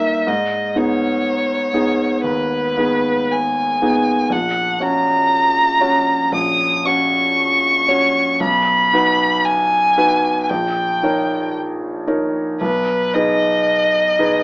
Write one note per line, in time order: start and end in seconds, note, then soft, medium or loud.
0.00 0.30 G2 soft
0.00 0.30 A#3 soft
0.00 0.30 D#4 soft
0.00 0.30 A#4 soft
0.00 0.29 E5 medium
0.27 0.75 G#2 soft
0.27 0.78 D#5 soft
0.75 1.70 B3 soft
0.75 1.70 D#4 soft
0.75 1.70 G#4 soft
0.75 2.24 C#5 medium
1.74 2.20 B3 soft
1.74 2.20 D#4 soft
1.74 2.21 G#4 soft
2.24 2.77 D#2 soft
2.24 3.33 B4 medium
2.77 3.78 B3 soft
2.77 3.78 D#4 soft
2.77 3.78 G#4 soft
3.31 4.34 G#5 soft
3.82 4.27 B3 soft
3.82 4.27 D#4 soft
3.82 4.27 G#4 soft
4.30 4.79 A#1 soft
4.30 4.83 F#5 medium
4.80 5.78 C#4 soft
4.80 5.78 F#4 soft
4.80 5.78 C#5 soft
4.80 6.33 A#5 medium
5.80 6.28 C#4 soft
5.80 6.29 F#4 soft
5.80 6.29 C#5 soft
6.32 6.83 A#1 soft
6.32 6.87 D#6 medium
6.85 7.84 C#4 soft
6.85 7.85 F#4 soft
6.85 7.85 C#5 soft
6.85 8.40 C#6 medium
7.88 8.36 C#4 soft
7.88 8.37 F#4 soft
7.88 8.36 C#5 soft
8.40 8.91 B1 soft
8.40 9.47 B5 medium
8.93 9.93 D#4 soft
8.93 9.93 F#4 soft
8.93 9.93 B4 soft
9.46 10.42 G#5 medium
9.97 10.45 D#4 soft
9.97 10.45 F#4 soft
9.97 10.45 B4 soft
10.44 10.51 G#5 soft
10.50 11.00 A#1 soft
10.50 11.54 G5 soft
11.03 12.04 D#4 soft
11.03 12.04 A#4 soft
11.03 12.04 C#5 soft
12.07 12.56 D#4 soft
12.07 12.57 A#4 soft
12.07 12.57 C#5 soft
12.61 13.12 B1 soft
12.61 13.16 B4 medium
13.14 14.14 D#4 soft
13.14 14.14 G#4 soft
13.14 14.14 B4 soft
13.14 14.43 D#5 medium
14.19 14.43 D#4 soft
14.19 14.43 G#4 soft
14.19 14.43 B4 soft